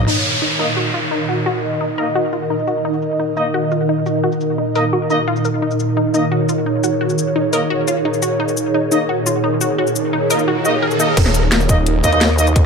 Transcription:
0.07 A#2 D#3 D#4 A#4, crash, downlifter
0.16 A#4
0.42 D#4
0.59 A#3 D#4 D#5
0.77 F#4
0.94 F4
1.02 D#5
1.11 D#4
1.29 F#4
1.46 F#4
1.63 cabasa
1.81 D#4
1.98 A#3 D#4 A#4 D#5, open hi-hat, cabasa
2.15 F#4
2.33 F4, cabasa
2.50 D#4
2.59 cabasa
2.67 F#4, cabasa
2.85 D#4
2.93 cabasa
3.02 cabasa
3.19 D#4
3.37 A#3 D#4 D#5, cabasa
3.54 F#4
3.71 F4, cabasa
3.89 D#4
4.06 F#4, cabasa
4.24 F#4
4.32 cabasa
4.41 cabasa
4.58 D#4
4.75 A#3 D#4 A#4 D#5, open hi-hat, cabasa
4.93 F#4
5.10 A#3 D#4 D#5, cabasa
5.28 F4
5.36 cabasa
5.45 A#4, cabasa
5.62 D#4 G#4
5.71 cabasa
5.80 cabasa
5.97 D#4
6.14 A#3 D#4 D#5, cabasa
6.22 C#5
6.32 F#4
6.49 F4, cabasa
6.66 D#4
6.84 F#4, cabasa
7.01 F#4
7.10 cabasa
7.18 cabasa
7.36 D#4
7.53 A#3 D#4 A#4 D#5, open hi-hat, cabasa
7.70 F#4
7.88 F4, cabasa
8.05 D#4
8.14 cabasa
8.22 F#4, cabasa
8.40 D#4, riser
8.48 cabasa
8.57 cabasa
8.74 D#4
8.92 A#3 D#4 D#5, cabasa
9.09 F#4
9.26 F4, cabasa
9.44 D#4
9.61 F#4, cabasa
9.78 F#4
9.87 cabasa
9.96 cabasa
10.13 D#4
10.30 A#3 D#4 A#4 D#5, open hi-hat, cabasa
10.39 cabasa
10.48 F#4
10.65 A#3 D#4 F#4 D#5, cabasa
10.82 A#4
10.91 cabasa
11.00 A#3 D#4 D#5, cabasa
11.17 D#1 A#2 D#3 D#4 A#4, kick, closed hi-hat, crash
11.26 cross-stick, snare
11.34 closed hi-hat, cabasa
11.43 cross-stick
11.52 snare, closed hi-hat, cabasa
11.60 cross-stick, cabasa
11.69 A#3 D#4 D#5, kick, closed hi-hat, cabasa
11.76 D#5
11.86 closed hi-hat
12.04 D#2 A#3 D#4 D#5, kick, closed hi-hat, cabasa
12.12 A#3 D#4 D#5, closed hi-hat
12.21 snare, closed hi-hat
12.38 A#3 D#4 D#5, closed hi-hat, cabasa
12.47 closed hi-hat, cabasa
12.56 kick, closed hi-hat

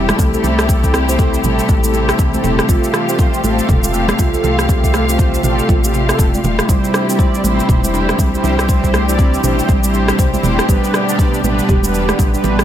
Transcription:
Already playing: E1 C3 G3 A3 C4 E4 G4 A4
0.09 cross-stick, high conga, shaker
0.19 C2 A3, kick, low conga, shaker
0.34 A3 C4 E4 G4 A4, shaker
0.44 C2 C4, low conga, shaker
0.59 cross-stick, shaker
0.69 E3 A3 C4 E4 G4 A4, kick, shaker
0.84 kick, shaker
0.94 C4, cross-stick, shaker
1.09 A3 C4 E4 G4 C5, shaker
1.19 A4, kick, shaker
1.34 shaker
1.44 A1 G3 A3 C4 E4 G4 A4, mid tom, low conga, shaker
1.59 shaker
1.69 A1 A3, kick, high conga, shaker
1.83 A3 C4 E4 G4 A4, shaker
1.94 C4, shaker
2.09 cross-stick, shaker
2.19 C2 E3, kick, shaker
2.34 A3 C4 E4 G4 A4, high conga, shaker
2.44 E1 C4, mid tom, low conga, shaker
2.59 cross-stick, shaker
2.69 A1 G3 A3 C4 F4 G4 A4 F5, kick, shaker
2.84 shaker
2.94 E3, cross-stick, shaker
3.09 A3 C4 F4 G4 C5, shaker
3.19 F3, kick, shaker
3.34 shaker
3.44 A1 A3 C4 F4 G4 A4, high conga, shaker
3.59 shaker
3.69 E1 C3, kick, mid tom, shaker
3.83 A3 C4 F4 G4 A4, high conga, shaker
3.94 A3, shaker
4.08 cross-stick, high conga, shaker
4.19 C2 F4, kick, low conga, shaker
4.33 A3 C4 F4 G4 A4, shaker
4.44 C2 E3, low conga, shaker
4.59 cross-stick, shaker
4.69 F3 A3 C4 F4 G4 A4, kick, shaker
4.84 kick, shaker
4.94 A3, cross-stick, shaker
5.09 A3 C4 F4 G4 C5, shaker
5.19 C3, kick, shaker
5.34 shaker
5.43 A1 A3 C4 F4 G4 A4, mid tom, low conga, shaker
5.59 shaker
5.69 A1 F4, kick, high conga, shaker
5.84 A3 C4 F4 G4 A4, shaker
5.94 C3 A3 C4 F4 G4 C5, shaker
6.09 A3 C4 F4 G4 A4, cross-stick, shaker
6.19 E1 C3, kick, shaker
6.34 A3 C4 F4 G4 D5, high conga, shaker
6.44 E1 A3, mid tom, low conga, shaker
6.59 A3, cross-stick, shaker
6.69 A1 C3 E3 G3 C4 E4 G4 C5, kick, shaker
6.84 shaker
6.94 D4, cross-stick, shaker
7.09 G3 C4 E4 G4 D5, shaker
7.19 C5, kick, shaker
7.34 shaker
7.44 A1 G3 A3 C4 E4 G4 C5, high conga, shaker
7.59 shaker
7.69 E1 C4, kick, mid tom, shaker
7.83 G3 C4 E4 G4 C5, high conga, shaker
7.94 D4, shaker
8.09 cross-stick, high conga, shaker
8.19 C2 G3, kick, low conga, shaker
8.34 G3 C4 E4 G4 C5, shaker
8.44 C2 D4, low conga, shaker
8.59 cross-stick, shaker
8.69 G3 C4 D4 E4 G4 C5, kick, shaker
8.84 kick, shaker
8.94 A3, cross-stick, shaker
9.08 G3 C4 E4 G4 D5, shaker
9.19 C4, kick, shaker
9.34 shaker
9.44 A1 G3 C4 D4 E4 G4 C5, mid tom, low conga, shaker
9.59 shaker
9.68 A1 G3, kick, high conga, shaker
9.84 G3 C4 E4 G4 C5, shaker
9.94 D4, shaker
10.08 cross-stick, shaker
10.19 C2 C5, kick, shaker
10.33 G3 C4 E4 G4 C5, high conga, shaker
10.43 E1 A3, mid tom, low conga, shaker
10.59 cross-stick, shaker
10.68 A1 B2 D3 G3 B3 D4 G4 B4, kick, shaker
10.84 shaker
10.94 B3, cross-stick, shaker
11.08 G3 B3 D4 G4 D5, shaker
11.19 B2, kick, shaker
11.34 shaker
11.44 A1 G3 B3 D4 G4 B4, high conga, shaker
11.59 shaker
11.69 E1 G4, kick, mid tom, shaker
11.83 G3 B3 D4 G4 B4, high conga, shaker
11.94 E3, shaker
12.09 cross-stick, high conga, shaker
12.19 A1 G3, kick, low conga, shaker
12.34 G3 B3 D4 G4 B4, shaker
12.44 A1 B3, low conga, shaker
12.59 cross-stick, shaker

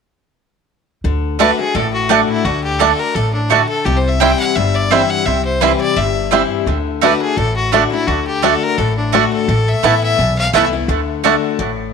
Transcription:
1.04 D2 D3
1.39 D3 A3 D4 F#4 B4 D5 A5
1.59 D4 F#4 G#4
1.75 A1 A2 A4
1.94 F#4
2.09 D3 A3 D4 F#4 D5 A5
2.29 E4
2.45 D2 D3 F#4
2.64 G4
2.79 D3 A3 D4 F#4 A4 D5 A5
2.99 A#4
3.15 A1 A2 A4
3.34 D4
3.50 D3 A3 D4 F#4 D5 A5
3.69 A4
3.85 C2 C3 G4
3.97 C5
4.08 E5
4.20 E3 G3 C4 E4 C5 G5
4.40 F#5
4.56 G1 G2 E5
4.74 D5
4.91 E3 G3 C4 E4 C5 E5 G5
5.10 F#5
5.25 C2 C3 E5
5.45 C5
5.61 E3 G3 C4 E4 B4 C5 G5
5.81 D5
5.96 G1 G2 E5
6.31 E3 G3 C4 E4 C5 G5
6.66 D2 D3
7.01 D3 A3 D4 F#4 B4 D5 A5
7.22 G#4
7.37 A1 A2 A4
7.56 F#4
7.72 D3 A3 D4 F#4 D5 A5
7.91 D4 E4 F#4
8.07 D2 D3 F#4
8.27 G4
8.42 D3 A3 D4 F#4 A4 D5 A5
8.63 A#4
8.78 A1 A2 A4
8.97 D4
9.12 D3 A3 D4 F#4 D5 A5
9.33 A4
9.48 A1 A2
9.68 E5
9.83 A1 E3 A3 B3 E4 B4 A5
10.03 E5
10.18 B1 E2
10.38 F5
10.53 C2 E3 A3 B3 E4 B4 E5 A5
10.73 B3 E4
10.88 D2 D3
11.24 D3 A3 D4 F#4 D5 A5
11.59 A1 A2

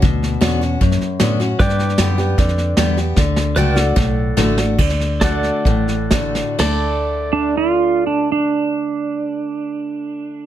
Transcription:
Already playing: B4 D5 F#5
0.02 D2 B2, kick, snare
0.23 snare
0.41 E2 D3 B3 C#4 F#4, snare, hi-hat pedal
0.61 C#4 F#4, snare
0.81 F#2, kick, snare
0.91 snare
1.01 muted fingered electric bass stroke, snare
1.20 A2 D3 B3 C#4 F#4, snare, hi-hat pedal
1.40 C#4 F#4, snare
1.59 G2 B4 D5 G5, kick, snare
1.69 snare
1.79 snare
1.89 snare
1.98 F#2 D3 G3 B3 G4, snare, hi-hat pedal
2.18 B3 G4, snare
2.38 F2 D3, kick, snare
2.48 snare
2.58 snare
2.77 E2 D3 G3 B3 G4, snare, hi-hat pedal
2.97 B3 G4, snare
3.16 D2 D3, kick, snare
3.36 snare
3.56 C#2 D3 A3 D4 F#4 B4 D5 G5, hi-hat pedal
3.71 A#4
3.76 D4 F#4 F#5, snare
3.82 A4
3.96 B1 A2, kick, snare
4.37 A1 D3 A3 D4 F#4, snare, hi-hat pedal
4.58 D4 F#4, snare
4.78 D2 D3, kick, snare, crash
4.89 snare
5.00 snare
5.21 D3 A3 D4 F#4 A4 D5 F#5, kick, snare, hi-hat pedal
5.43 snare
5.65 A1 A2, kick, snare
5.88 snare
6.11 D3 A3 D4 F#4, kick, snare, hi-hat pedal
6.35 snare
6.59 D2 D3 A3 D4 A4 D5, snare, crash
6.63 A5
7.33 D4
7.57 F4
8.07 D4
8.32 D4

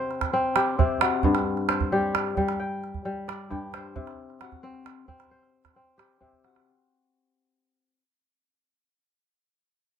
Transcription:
Already playing: C3 C4 F#4 C5
0.11 calabash click
0.21 calabash thump, calabash click
0.33 C4, calabash click
0.56 G4, calabash click
0.79 C3 C4, calabash thump
1.01 F#4, calabash click
1.23 G2, calabash thump
1.35 calabash click
1.57 calabash click
1.69 C5, calabash click
1.80 calabash thump
1.92 G3 G4
2.15 calabash click
2.37 G3, calabash thump
2.49 calabash click
2.60 G5
2.84 calabash click
2.94 calabash thump
3.05 G3, calabash click
3.28 D5, calabash click
3.50 G2 G4, calabash thump
3.74 C5, calabash click
3.96 C3, calabash thump
4.07 calabash click
4.30 calabash click
4.41 F#4, calabash click
4.52 calabash thump, calabash click
4.63 C4
4.74 calabash click
4.86 calabash click
5.08 C4, calabash thump, calabash click
5.20 calabash click
5.31 C5
5.43 calabash click
5.65 calabash thump, calabash click
5.76 C4
5.98 G4, calabash click
6.11 calabash click
6.21 C3 C4, calabash thump
6.33 calabash thump
6.44 F#4, calabash click
6.56 calabash click

